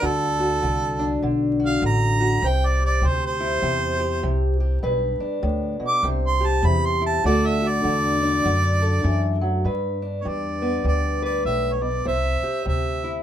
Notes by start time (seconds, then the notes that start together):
0.02 D2 D3 F#4 A4
0.39 F#4
0.62 C2 D3
0.99 D4
1.22 B1 D3
1.60 F#4
1.66 F5
1.82 A1 D3
1.86 A#5
2.20 F#4
2.42 C2 C3 C5
2.47 G5
2.66 D5
2.79 G4
2.86 D5
3.01 D2 C3
3.07 C5
3.27 C5
3.40 E4
3.62 E2 C3
4.00 G4
4.23 C2 C3
4.60 G4
4.83 B1 G2 B4
5.19 D4, muted upright bass stroke
5.43 D2 A2
5.80 B2, muted upright bass stroke
5.87 D6
6.03 C2 C3 C5
6.27 C6
6.40 G4
6.46 A5
6.63 E2 C3 B5
6.85 C6
7.01 E4
7.06 A5
7.24 D2 D3 A3 D4 F#4 A4 D5
7.46 E5
7.61 F#4
7.68 D5
7.84 E2 D3
8.23 D4
8.45 F#2 D3
8.82 A4
9.04 F#2 E3
9.41 F#3
9.64 G2 B4
10.02 D4
10.21 G2 C#5
10.25 E2 D5
10.62 B3
10.84 D2 G2 D5
11.22 B4 D5
11.45 B1 A2 E5
11.73 C#5
11.81 B2 D5
12.05 C2 C3 C5 E5
12.42 G4, muted upright bass stroke
12.65 D2 C3 E5
13.04 E4